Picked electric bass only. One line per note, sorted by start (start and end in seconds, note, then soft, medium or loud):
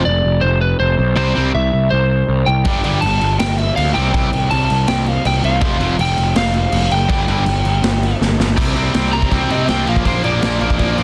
0.06 0.21 F1 loud
0.24 0.39 F1 medium
0.43 0.73 F1 medium
0.80 0.95 F1 medium
0.99 1.14 B1 loud
1.17 1.32 C2 medium
1.36 1.51 C2 medium
1.55 1.69 C2 loud
1.73 1.88 C2 medium
1.92 2.22 C2 medium
2.29 2.43 C2 medium
2.48 2.62 C2 medium
2.66 2.80 G1 medium
2.85 3.00 G1 medium
3.03 3.18 G1 loud
3.22 3.36 G1 medium
3.40 3.70 G1 loud
3.78 3.92 D2 loud
3.97 4.11 C2 medium
4.14 4.29 C2 loud
4.34 4.48 C2 medium
4.52 4.66 C2 medium
4.71 4.85 C2 medium
4.88 5.18 C2 loud
5.25 5.40 C2 medium
5.43 5.58 C2 loud
5.62 5.77 F1 medium
5.80 5.95 F1 medium
5.99 6.14 F1 loud
6.18 6.32 F1 medium
6.36 6.65 F1 loud
6.73 6.87 F1 medium
6.91 7.06 F#1 loud
7.09 7.24 G1 medium
7.28 7.43 G1 medium
7.46 7.61 G1 medium
7.64 7.79 G1 medium
7.83 8.13 G1 medium
8.21 8.36 G1 medium
8.39 8.54 G1 medium
8.58 8.88 C2 medium
8.95 9.25 C2 medium
9.31 9.47 C2 medium
9.50 9.65 C3 medium
9.69 9.84 C2 medium
9.87 10.03 A#1 medium
10.05 10.21 A#1 loud
10.25 10.40 A#1 medium
10.42 10.58 A#1 loud
10.61 10.77 A#1 medium
10.79 11.03 A#1 loud